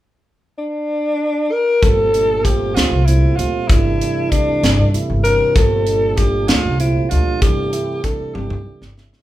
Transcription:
0.58 1.53 D4 medium
1.52 1.84 A#4 medium
1.82 2.72 G1 medium
1.82 2.12 A#2 medium
1.82 2.12 F3 medium
1.82 2.12 G3 medium
1.82 2.13 A3 medium
1.82 2.13 C4 medium
1.82 2.46 A4 medium
1.82 kick medium
1.82 closed hi-hat medium
2.13 2.43 A#2 medium
2.13 2.43 F3 soft
2.13 2.43 G3 soft
2.13 2.43 A3 soft
2.13 2.44 D4 medium
2.13 closed hi-hat medium
2.44 3.03 A#2 medium
2.44 3.03 F3 medium
2.44 3.04 G3 soft
2.44 3.04 A3 soft
2.44 3.04 C4 medium
2.44 2.76 G4 medium
2.44 kick medium
2.44 closed hi-hat medium
2.74 2.91 D2 medium
2.74 3.08 F4 medium
2.74 snare medium
2.74 closed hi-hat medium
2.91 3.21 C2 medium
3.06 3.37 A#2 medium
3.06 3.37 F3 soft
3.06 3.37 G3 soft
3.06 3.37 A3 soft
3.06 3.37 C4 medium
3.06 3.38 E4 medium
3.06 closed hi-hat medium
3.23 muted upright bass stroke soft
3.36 3.53 D2 medium
3.36 3.69 A#2 medium
3.36 3.70 F3 medium
3.36 3.68 G3 soft
3.36 3.69 A3 soft
3.36 3.70 C4 medium
3.36 3.69 F4 medium
3.36 closed hi-hat medium
3.68 3.99 G1 medium
3.68 3.99 C3 medium
3.68 3.99 E3 medium
3.68 3.99 G3 medium
3.68 3.99 A3 medium
3.68 3.99 D4 medium
3.68 4.32 E4 medium
3.68 kick medium
3.68 closed hi-hat medium
4.00 4.30 C3 medium
4.00 4.30 E3 soft
4.00 4.30 G3 medium
4.00 4.30 A3 medium
4.00 4.31 D4 medium
4.00 closed hi-hat medium
4.31 4.90 C3 medium
4.31 4.90 E3 soft
4.31 4.90 G3 soft
4.31 4.91 A3 medium
4.31 4.97 D4 medium
4.31 4.91 D4 medium
4.31 kick medium
4.31 closed hi-hat medium
4.47 muted upright bass stroke soft
4.63 4.78 G1 medium
4.63 snare medium
4.63 closed hi-hat medium
4.79 4.93 G2 medium
4.93 5.23 C3 medium
4.93 5.23 E3 soft
4.93 5.23 G3 soft
4.93 5.23 A3 soft
4.93 5.24 E4 medium
4.93 muted upright bass stroke soft
4.93 closed hi-hat medium
5.10 5.39 G1 medium
5.24 5.56 C3 medium
5.24 5.56 E3 medium
5.24 5.55 G3 medium
5.24 5.55 C4 soft
5.24 5.57 D4 medium
5.24 5.57 A#4 medium
5.24 closed hi-hat medium
5.55 6.45 G1 medium
5.55 5.85 A#2 medium
5.55 5.85 F3 medium
5.55 5.85 G3 medium
5.55 5.85 A3 medium
5.55 5.86 C4 medium
5.55 6.18 A4 medium
5.55 kick medium
5.55 closed hi-hat medium
5.86 6.16 A#2 medium
5.86 6.17 F3 medium
5.86 6.17 G3 medium
5.86 6.17 A3 medium
5.86 6.17 D4 medium
5.86 closed hi-hat soft
6.17 6.76 A#2 medium
6.17 6.77 F3 medium
6.17 6.77 G3 medium
6.17 6.77 A3 soft
6.17 6.77 D4 medium
6.17 6.49 G4 medium
6.17 kick medium
6.17 closed hi-hat medium
6.48 6.64 D2 medium
6.48 6.79 F4 medium
6.48 snare loud
6.48 closed hi-hat medium
6.65 6.94 C2 medium
6.79 7.09 A#2 medium
6.79 7.09 F3 medium
6.79 7.09 G3 soft
6.79 7.09 A3 soft
6.79 7.10 C4 medium
6.79 7.11 E4 medium
6.79 closed hi-hat soft
6.96 muted upright bass stroke soft
7.10 7.26 D2 medium
7.10 7.42 A#2 medium
7.10 7.42 F3 soft
7.10 7.41 G3 soft
7.10 7.41 A3 soft
7.10 7.41 D4 medium
7.10 7.41 F4 medium
7.10 closed hi-hat medium
7.41 7.71 G1 medium
7.41 7.71 C3 medium
7.41 7.71 E3 medium
7.41 7.71 G3 medium
7.41 7.72 A3 medium
7.41 7.72 D4 medium
7.41 8.05 G4 medium
7.41 kick medium
7.41 closed hi-hat medium
7.72 8.02 C3 medium
7.72 8.02 E3 medium
7.72 8.02 G3 medium
7.72 8.02 A3 soft
7.72 8.02 E4 medium
7.72 closed hi-hat medium
8.03 8.62 C3 medium
8.03 8.62 E3 soft
8.03 8.63 G3 medium
8.03 8.63 A3 medium
8.03 8.63 D4 medium
8.03 8.36 A4 medium
8.03 kick medium
8.03 closed hi-hat medium
8.20 muted upright bass stroke soft
8.35 8.50 G1 medium
8.35 9.05 G4 medium
8.35 high tom soft
8.50 8.65 G2 medium
8.50 high tom soft
8.65 8.95 C3 medium
8.65 8.95 E3 medium
8.65 8.95 G3 soft
8.65 8.96 A3 soft
8.65 8.96 D4 medium
8.65 muted upright bass stroke soft
8.81 9.11 G1 medium
8.81 snare medium
8.97 9.22 C3 medium
8.97 9.22 E3 soft
8.97 9.22 G3 soft
8.97 9.22 A3 soft
8.97 9.22 E4 medium
8.97 snare medium
9.13 snare medium

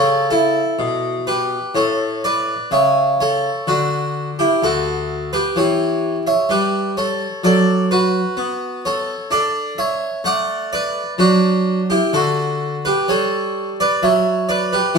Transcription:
0.00 0.60 C#3 medium
0.00 0.29 A4 medium
0.00 0.26 C#5 medium
0.30 1.24 E4 medium
0.30 1.13 A4 medium
0.79 1.56 B2 medium
1.27 1.73 G4 medium
1.27 1.75 B4 medium
1.75 2.52 A2 medium
1.75 2.21 A4 medium
1.75 2.24 C#5 medium
2.24 2.69 B4 medium
2.24 2.72 D5 medium
2.71 3.48 C#3 medium
2.71 3.17 C#5 medium
2.71 3.12 E5 medium
3.20 3.65 A4 medium
3.20 3.68 C#5 medium
3.67 4.43 D3 medium
3.67 4.36 D4 medium
3.67 4.28 F#4 loud
4.39 4.62 E4 medium
4.39 4.63 G4 medium
4.63 5.37 D2 medium
4.63 5.29 F#4 medium
4.63 5.33 A4 medium
5.33 5.55 G4 medium
5.33 5.56 B4 loud
5.56 6.30 E3 medium
5.56 6.22 G4 medium
5.56 6.16 C#5 medium
6.27 6.48 C#5 medium
6.27 6.49 E5 medium
6.49 7.24 G3 medium
6.49 6.94 G4 medium
6.49 6.90 B4 medium
6.97 7.41 A4 medium
6.97 7.44 C#5 medium
7.44 8.18 F#3 medium
7.44 7.88 A4 medium
7.44 7.84 D5 loud
7.91 8.81 F#4 medium
7.91 8.85 B4 loud
8.37 9.12 B3 medium
8.85 9.29 A4 medium
8.85 9.31 C#5 medium
9.31 10.06 D4 medium
9.31 9.76 A4 medium
9.31 9.71 D5 loud
9.78 10.22 C#5 medium
9.78 10.18 E5 loud
10.24 11.00 A3 medium
10.24 10.69 D5 medium
10.24 10.72 F#5 loud
10.73 11.17 B4 medium
10.73 11.12 D5 loud
11.18 11.94 F#3 medium
11.18 11.86 D4 medium
11.18 11.79 F#4 loud
11.90 12.12 E4 medium
11.90 12.13 G4 loud
12.13 12.89 D3 medium
12.13 12.82 F#4 medium
12.13 12.74 A4 loud
12.85 13.08 G4 medium
12.85 13.08 B4 loud
13.08 13.83 G3 medium
13.08 13.76 A4 medium
13.08 13.68 C#5 loud
13.80 14.02 B4 medium
13.80 14.03 D5 loud
14.03 14.77 F#3 medium
14.03 14.47 C#5 medium
14.03 14.49 E5 loud
14.49 14.71 B4 medium
14.49 14.72 D5 loud
14.73 14.95 G4 medium
14.73 14.96 B4 loud
14.95 14.98 E3 medium

